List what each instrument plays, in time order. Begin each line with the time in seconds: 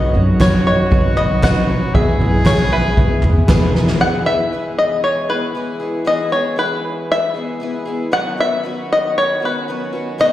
Already playing: upright piano B1 B2 F#3 C#4 D#4 B4, twelve-string acoustic guitar B2 F#3 C#4 D#4 F#4, harmonium D#3 B3 C#4 F#4, trumpet F#4, ukulele B4 C#5, five-string banjo D#5
0.14 upright bass F#2, upright piano F#3 C#4 D#4 C#5, twelve-string acoustic guitar C#4 D#4 F#4, ukulele C#5, floor tom
0.39 twelve-string acoustic guitar B2 F#3 C#4 D#4 F#4, upright piano F#3 C#4 D#4 B4, ukulele B4, five-string banjo C#5, kick, snare, clap, tambourine
0.65 upright piano F#3 C#4 D#4 B4, twelve-string acoustic guitar D#4 F#4, five-string banjo C#5, ukulele D#5
0.69 twelve-string acoustic guitar C#4
0.91 upright piano F#3 C#4 D#4 B4, twelve-string acoustic guitar F#3 C#4 D#4 F#4, ukulele B4, kick, floor tom
1.16 upright bass B1, upright piano F#3 C#4 D#4 B4, five-string banjo D#5, ukulele B5, clap, floor tom
1.42 upright bass B1, twelve-string acoustic guitar B2 F#3 C#4 D#4 F#4, upright piano F#3 C#4 D#4 B4, ukulele B4, five-string banjo F#5, kick, snare, clap, tambourine
1.68 upright piano F#3 C#4 D#4 B4, twelve-string acoustic guitar D#4 F#4, ukulele C#5
1.72 twelve-string acoustic guitar C#4
1.93 upright piano E2 E3 G#3 B3 E4 B4, upright bass E2, harmonium E3 G#3 B3 G#4, twelve-string acoustic guitar E3 B3 E4 G#4, trumpet G#4, ukulele G#4, five-string banjo E5, kick, floor tom
2.20 upright bass B1, upright piano G#3 B3 E4 B4, twelve-string acoustic guitar B3 E4 G#4, ukulele B4, floor tom
2.45 twelve-string acoustic guitar E3 B3 E4 G#4, upright piano G#3 B3 B4, ukulele G#4, five-string banjo C#5, kick, snare, clap, tambourine
2.71 upright piano G#3 B3 E4 B4, twelve-string acoustic guitar B3 E4 G#4, five-string banjo B4, ukulele E5
2.96 twelve-string acoustic guitar E3 B3 E4 G#4, upright piano G#3 B3 E4 B4, ukulele G#4, kick, floor tom
3.22 upright bass E2, upright piano G#3 B3 E4 B4, ukulele G#5, clap, floor tom
3.47 upright bass E2, twelve-string acoustic guitar E3 B3 E4 G#4, upright piano G#3 B3 E4 B4 B5, ukulele G#4, kick, snare, clap, tambourine
3.73 upright piano G#3 B3 E4 A#4, twelve-string acoustic guitar B3 E4 G#4, ukulele B4, snare
3.87 snare
4.00 twelve-string acoustic guitar E3 B3 E4 G#4, harmonium E3 G#3 B3 G#4, five-string banjo F#5
4.25 twelve-string acoustic guitar B3 E4 G#4, five-string banjo E5
4.53 twelve-string acoustic guitar E3 B3 E4 G#4
4.79 five-string banjo D#5
5.04 five-string banjo C#5
5.29 twelve-string acoustic guitar B3 E4 G#4, five-string banjo B4
5.55 twelve-string acoustic guitar E3 B3 E4 G#4
5.80 twelve-string acoustic guitar B3 E4 G#4
6.05 twelve-string acoustic guitar E3 B3 E4 G#4, five-string banjo D#5
6.30 twelve-string acoustic guitar B3 E4 G#4, five-string banjo C#5
6.56 twelve-string acoustic guitar E3 B3 E4 G#4, five-string banjo B4
7.12 five-string banjo E5
7.34 twelve-string acoustic guitar B3 E4 G#4
7.60 twelve-string acoustic guitar E3 B3 E4 G#4
7.85 twelve-string acoustic guitar B3 E4 G#4
8.11 twelve-string acoustic guitar B2 D#3 F#3 B3 C#4 F#4, harmonium D#3 C#4 F#4, five-string banjo F#5
8.37 twelve-string acoustic guitar F#3 B3 C#4 F#4, five-string banjo E5
8.63 twelve-string acoustic guitar F#3 B3 C#4 F#4
8.93 five-string banjo D#5
9.18 five-string banjo C#5
9.40 twelve-string acoustic guitar F#3 B3 C#4 F#4
9.45 five-string banjo B4
9.68 twelve-string acoustic guitar F#3 B3 C#4 F#4
9.93 twelve-string acoustic guitar F#3 B3 C#4 F#4
10.18 twelve-string acoustic guitar B2 D#3 F#3 B3 C#4 F#4, five-string banjo D#5